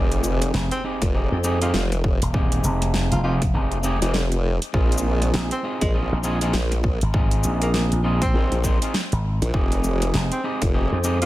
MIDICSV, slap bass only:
0, 0, Header, 1, 2, 480
1, 0, Start_track
1, 0, Key_signature, -4, "minor"
1, 0, Tempo, 600000
1, 1874, Time_signature, 4, 2, 24, 8
1, 9005, End_track
2, 0, Start_track
2, 0, Title_t, "Slap bass"
2, 0, Program_c, 0, 36
2, 432, Note_on_c, 0, 29, 92
2, 553, Note_off_c, 0, 29, 0
2, 1056, Note_on_c, 0, 41, 98
2, 1378, Note_off_c, 0, 41, 0
2, 1776, Note_on_c, 0, 27, 90
2, 2098, Note_off_c, 0, 27, 0
2, 2110, Note_on_c, 0, 29, 98
2, 2472, Note_off_c, 0, 29, 0
2, 2495, Note_on_c, 0, 29, 98
2, 2817, Note_off_c, 0, 29, 0
2, 2830, Note_on_c, 0, 29, 101
2, 3192, Note_off_c, 0, 29, 0
2, 4276, Note_on_c, 0, 34, 94
2, 4394, Note_off_c, 0, 34, 0
2, 4897, Note_on_c, 0, 34, 95
2, 5219, Note_off_c, 0, 34, 0
2, 5617, Note_on_c, 0, 32, 96
2, 5938, Note_off_c, 0, 32, 0
2, 5955, Note_on_c, 0, 34, 95
2, 6314, Note_off_c, 0, 34, 0
2, 6339, Note_on_c, 0, 34, 93
2, 6659, Note_off_c, 0, 34, 0
2, 7298, Note_on_c, 0, 32, 94
2, 7514, Note_off_c, 0, 32, 0
2, 8115, Note_on_c, 0, 29, 100
2, 8234, Note_off_c, 0, 29, 0
2, 8738, Note_on_c, 0, 41, 94
2, 9005, Note_off_c, 0, 41, 0
2, 9005, End_track
0, 0, End_of_file